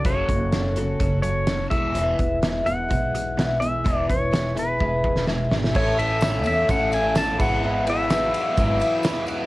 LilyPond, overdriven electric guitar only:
\new Staff \with { instrumentName = "Overdriven electric guitar" } { \clef bass \time 4/4 \key e \mixolydian \tempo 4 = 126 <fis, cis fis>8 <fis, cis>8 <fis, cis>8 <fis, cis>8 <fis, cis>8 <fis, cis>8 <fis, cis>8 <e, b, e>8 | <e, b, e>8 <e, b,>8 <e, b,>8 <e, b,>8 <e, b,>8 <e, b,>8 <e, b,>8 <e, b,>8 | <e, b, e>8 <e, b,>8 <e, b,>8 <e, b,>8 <e, b,>8 <e, b,>8 <e, b,>8 <e, b,>8 | <a, a cis' e' a'>8 <cis' e' a'>8 <a cis' e' a'>4. <cis' e' a'>8 <a, a cis' e' a'>8 <gis b e' b'>8 |
<gis b e' b'>8 <b e' b'>8 <gis b e' b'>4. <b e' b'>8 <gis b e' b'>8 <b e' b'>8 | }